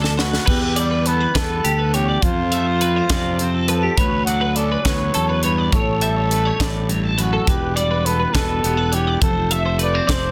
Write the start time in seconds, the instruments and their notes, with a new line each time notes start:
Already playing: clean electric guitar D2 D3 D4, fingered electric bass D2, trumpet D4
0.02 clean electric guitar A4, snare
0.17 clean electric guitar D2 B4, trumpet F#4, snare
0.33 snare
0.46 fingered electric bass E2, clean electric guitar E2 B4, trumpet G4, kick, crash
0.76 clean electric guitar G3 D5, trumpet D5, closed hi-hat
0.91 clean electric guitar B4
1.06 clean electric guitar B3 A4, trumpet B4, closed hi-hat
1.20 clean electric guitar B4
1.35 fingered electric bass E2, trumpet A4, clean electric guitar B4, kick, snare, closed hi-hat
1.64 fingered electric bass D2, clean electric guitar D2 G4, closed hi-hat
1.79 clean electric guitar B4
1.94 clean electric guitar E2 C#5, trumpet G4, closed hi-hat
2.09 clean electric guitar D5
2.22 fingered electric bass F2, clean electric guitar F2 C5, trumpet F4, kick, closed hi-hat
2.52 clean electric guitar A3 E5, closed hi-hat
2.67 clean electric guitar C5
2.81 clean electric guitar C4 B4, closed hi-hat
2.96 clean electric guitar C5
3.10 fingered electric bass F2, clean electric guitar C3 D5, kick, snare, closed hi-hat
3.39 clean electric guitar C4 C5, closed hi-hat
3.54 clean electric guitar A4
3.68 clean electric guitar F3 B4, trumpet A4, closed hi-hat
3.83 clean electric guitar G4
3.97 fingered electric bass D2, clean electric guitar D2 C#5, trumpet B4, kick, closed hi-hat
4.25 clean electric guitar F#3 D5, trumpet F#5, closed hi-hat
4.41 clean electric guitar B4
4.56 clean electric guitar C#4 A4, trumpet D5, closed hi-hat
4.72 clean electric guitar B4
4.84 fingered electric bass D2, clean electric guitar E2 B4, trumpet C#5, kick, snare, closed hi-hat
5.14 fingered electric bass E2, clean electric guitar F#2 A4, closed hi-hat
5.29 clean electric guitar B4
5.43 clean electric guitar G2 C#5, trumpet B4, closed hi-hat
5.58 clean electric guitar D5
5.72 fingered electric bass A1, clean electric guitar A2 C#5, trumpet A4, kick, closed hi-hat
6.01 clean electric guitar G3 E5, closed hi-hat
6.16 clean electric guitar C#5
6.30 clean electric guitar A3 B4, closed hi-hat
6.45 clean electric guitar C#5
6.60 fingered electric bass A1, clean electric guitar A2 D5, kick, snare, closed hi-hat
6.89 clean electric guitar G2 C#5, closed hi-hat
7.04 clean electric guitar A4
7.18 clean electric guitar F#2 B4, trumpet F#4, closed hi-hat
7.33 clean electric guitar A4
7.47 fingered electric bass E1, clean electric guitar E2 B4, trumpet G4, kick, closed hi-hat
7.75 clean electric guitar G3 D5, trumpet D5, closed hi-hat
7.91 clean electric guitar B4
8.06 clean electric guitar B3 A4, trumpet B4, closed hi-hat
8.20 clean electric guitar B4
8.34 fingered electric bass E1, clean electric guitar B2 B4, trumpet A4, kick, snare, closed hi-hat
8.63 fingered electric bass E1, clean electric guitar B3 G4, closed hi-hat
8.77 clean electric guitar B4
8.92 clean electric guitar E3 C#5, trumpet G4, closed hi-hat
9.07 clean electric guitar D5
9.21 fingered electric bass F1, clean electric guitar F2 C5, trumpet A4, kick, closed hi-hat
9.51 clean electric guitar A3 E5, trumpet E5, closed hi-hat
9.66 clean electric guitar C5
9.79 clean electric guitar A3 B4, trumpet D5, closed hi-hat
9.94 clean electric guitar C4 C5
10.07 fingered electric bass F1, clean electric guitar C3 D5, trumpet C5, kick, snare, closed hi-hat